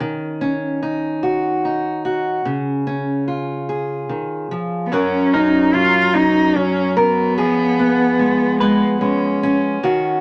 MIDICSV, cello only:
0, 0, Header, 1, 2, 480
1, 0, Start_track
1, 0, Key_signature, 6, "major"
1, 0, Tempo, 818554
1, 6, Time_signature, 3, 2, 24, 8
1, 5985, End_track
2, 0, Start_track
2, 0, Title_t, "Cello"
2, 0, Program_c, 0, 42
2, 2850, Note_on_c, 0, 59, 55
2, 2884, Note_on_c, 0, 61, 78
2, 2893, Note_off_c, 0, 59, 0
2, 3127, Note_on_c, 0, 63, 70
2, 3136, Note_off_c, 0, 61, 0
2, 3364, Note_on_c, 0, 65, 77
2, 3373, Note_off_c, 0, 63, 0
2, 3601, Note_on_c, 0, 63, 82
2, 3610, Note_off_c, 0, 65, 0
2, 3847, Note_on_c, 0, 61, 84
2, 3856, Note_off_c, 0, 63, 0
2, 4086, Note_on_c, 0, 59, 82
2, 4095, Note_off_c, 0, 61, 0
2, 5045, Note_off_c, 0, 59, 0
2, 5048, Note_on_c, 0, 56, 74
2, 5270, Note_off_c, 0, 56, 0
2, 5290, Note_on_c, 0, 61, 67
2, 5624, Note_off_c, 0, 61, 0
2, 5985, End_track
0, 0, End_of_file